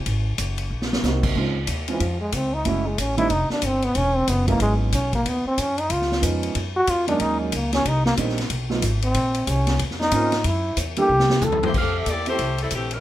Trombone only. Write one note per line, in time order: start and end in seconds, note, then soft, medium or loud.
1.91 2.04 E3 medium
2.02 2.20 F3 medium
2.21 2.36 G#3 medium
2.35 2.55 C4 medium
2.54 2.68 D#4 medium
2.66 2.88 E4 medium
2.87 3.01 G#3 medium
2.99 3.18 C#4 medium
3.18 3.32 E4 loud
3.31 3.51 D#4 medium
3.51 3.67 D4 medium
3.65 3.86 C4 medium
3.85 3.99 B3 medium
3.97 4.17 C#4 medium
4.16 4.30 C4 medium
4.29 4.48 B3 medium
4.49 4.60 A#3 medium
4.62 4.74 G#3 medium
4.94 5.12 C#4 medium
5.15 5.29 A#3 medium
5.27 5.46 B3 medium
5.47 5.61 C4 medium
5.60 5.81 C#4 medium
5.80 5.94 D#4 medium
5.92 6.24 F4 medium
6.76 6.91 F#4 loud
6.90 7.08 F4 medium
7.08 7.23 D4 medium
7.21 7.40 D#4 medium
7.41 7.55 F#3 soft
7.54 7.73 A#3 medium
7.74 7.89 C#4 medium
7.88 8.06 D#4 medium
8.06 8.14 A#3 medium
9.04 9.51 C4 medium
9.49 9.81 C#4 medium
10.00 10.48 D#4 loud
10.46 10.78 E4 medium
10.99 11.46 G4 loud
11.44 11.69 A4 medium